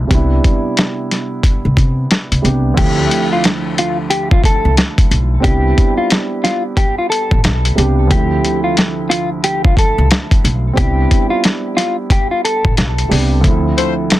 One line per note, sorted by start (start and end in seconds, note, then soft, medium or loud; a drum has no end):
0.07 0.37 C2 loud
0.07 2.38 C3 medium
0.07 2.39 G3 medium
0.07 2.40 B3 medium
0.07 kick loud
0.07 closed hi-hat loud
0.13 2.41 D4 medium
0.13 2.42 E4 medium
0.44 kick medium
0.44 closed hi-hat medium
0.77 snare loud
0.77 closed hi-hat medium
1.11 snare soft
1.11 closed hi-hat medium
1.43 kick medium
1.43 closed hi-hat loud
1.65 1.75 C2 medium
1.77 2.04 C3 loud
1.77 kick medium
1.77 closed hi-hat medium
2.11 snare loud
2.11 closed hi-hat medium
2.32 2.42 C2 medium
2.32 closed hi-hat medium
2.42 2.71 C2 medium
2.42 2.76 C3 medium
2.42 2.77 G3 medium
2.42 2.77 B3 medium
2.42 2.78 D4 medium
2.42 2.78 G4 medium
2.42 closed hi-hat medium
2.74 5.38 D2 medium
2.74 3.04 D2 loud
2.74 5.39 F3 medium
2.74 5.40 A3 medium
2.74 kick loud
2.74 closed hi-hat loud
2.74 crash loud
2.78 5.39 C4 medium
2.78 5.42 E4 medium
2.78 3.29 G4 loud
3.11 closed hi-hat medium
3.33 3.44 F4 medium
3.44 snare loud
3.44 closed hi-hat loud
3.78 3.97 F4 medium
3.78 closed hi-hat medium
4.10 4.29 G4 medium
4.10 closed hi-hat loud
4.31 4.43 F4 medium
4.31 kick loud
4.44 4.75 A4 medium
4.44 kick medium
4.44 closed hi-hat medium
4.65 4.75 C2 medium
4.77 snare loud
4.77 closed hi-hat medium
4.98 kick loud
4.98 closed hi-hat medium
5.11 5.37 B1 medium
5.11 closed hi-hat medium
5.40 7.72 G3 medium
5.40 7.73 B3 medium
5.40 7.71 C4 medium
5.40 5.95 G4 loud
5.40 kick loud
5.44 5.71 C2 loud
5.44 7.74 D4 medium
5.44 7.75 E4 medium
5.44 closed hi-hat loud
5.78 kick medium
5.78 closed hi-hat medium
5.98 6.09 F4 medium
6.10 snare loud
6.10 closed hi-hat loud
6.44 6.62 F4 medium
6.44 snare soft
6.44 closed hi-hat medium
6.77 6.96 G4 medium
6.77 kick medium
6.77 closed hi-hat loud
6.98 7.09 F4 medium
7.10 7.40 A4 medium
7.10 closed hi-hat medium
7.31 7.42 A1 medium
7.31 kick loud
7.44 7.71 B1 loud
7.44 snare loud
7.44 closed hi-hat medium
7.65 closed hi-hat medium
7.75 8.11 C2 medium
7.75 8.10 C3 medium
7.75 8.10 G3 medium
7.75 8.10 B3 medium
7.75 8.11 D4 medium
7.75 8.11 G4 medium
7.75 closed hi-hat medium
8.07 10.72 D2 medium
8.07 8.37 D2 loud
8.07 10.73 F3 medium
8.07 10.74 A3 medium
8.07 kick loud
8.07 closed hi-hat loud
8.12 10.72 C4 medium
8.12 10.75 E4 medium
8.12 8.62 G4 loud
8.45 closed hi-hat medium
8.64 8.76 F4 medium
8.77 snare loud
8.77 closed hi-hat medium
9.10 9.29 F4 medium
9.10 closed hi-hat medium
9.44 9.63 G4 medium
9.44 closed hi-hat loud
9.65 9.76 F4 medium
9.65 kick loud
9.77 10.08 A4 medium
9.77 kick medium
9.77 closed hi-hat medium
9.98 10.08 C2 medium
10.11 snare loud
10.11 closed hi-hat medium
10.31 kick loud
10.31 closed hi-hat medium
10.44 10.71 B1 medium
10.44 closed hi-hat medium
10.73 13.06 G3 medium
10.73 13.07 B3 medium
10.73 13.05 C4 medium
10.73 kick loud
10.78 11.04 C2 loud
10.78 13.08 D4 medium
10.78 13.08 E4 medium
10.78 11.28 G4 loud
10.78 closed hi-hat loud
11.11 kick medium
11.11 closed hi-hat medium
11.30 11.42 F4 medium
11.44 snare loud
11.44 closed hi-hat medium
11.77 11.96 F4 medium
11.77 snare soft
11.77 closed hi-hat medium
12.10 12.30 G4 medium
12.10 kick medium
12.10 closed hi-hat loud
12.31 12.43 F4 medium
12.45 12.74 A4 medium
12.45 closed hi-hat medium
12.65 12.75 A1 medium
12.65 kick loud
12.77 13.04 B1 loud
12.77 snare loud
12.77 closed hi-hat medium
12.98 closed hi-hat medium
13.08 13.44 C2 medium
13.08 13.43 C3 medium
13.08 13.43 G3 medium
13.08 13.44 B3 medium
13.08 13.44 D4 medium
13.08 13.45 G4 medium
13.08 open hi-hat soft
13.41 14.20 D2 medium
13.41 13.71 D2 loud
13.41 14.20 F3 medium
13.41 14.20 A3 medium
13.41 kick loud
13.41 closed hi-hat loud
13.46 14.20 C4 medium
13.46 14.20 E4 medium
13.77 13.93 A3 medium
13.77 13.93 F4 medium
13.77 13.93 C5 medium
13.77 closed hi-hat medium
14.10 snare loud
14.10 closed hi-hat medium